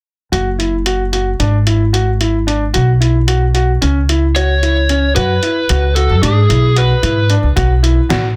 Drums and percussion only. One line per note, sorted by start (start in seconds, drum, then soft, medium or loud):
0.33 closed hi-hat medium
0.60 closed hi-hat soft
0.86 closed hi-hat medium
1.13 closed hi-hat medium
1.40 closed hi-hat medium
1.67 closed hi-hat soft
1.94 closed hi-hat medium
2.21 closed hi-hat soft
2.48 closed hi-hat medium
2.74 closed hi-hat medium
3.02 closed hi-hat soft
3.28 closed hi-hat medium
3.55 closed hi-hat soft
3.82 closed hi-hat medium
4.09 closed hi-hat soft
4.36 closed hi-hat medium
4.63 closed hi-hat soft
4.89 closed hi-hat medium
5.16 closed hi-hat medium
5.43 closed hi-hat medium
5.69 closed hi-hat medium
5.96 closed hi-hat medium
6.23 closed hi-hat medium
6.50 closed hi-hat soft
6.76 closed hi-hat medium
7.03 closed hi-hat soft
7.30 closed hi-hat soft
7.57 kick loud
7.57 closed hi-hat medium
7.84 closed hi-hat medium
8.10 snare medium
8.10 closed hi-hat medium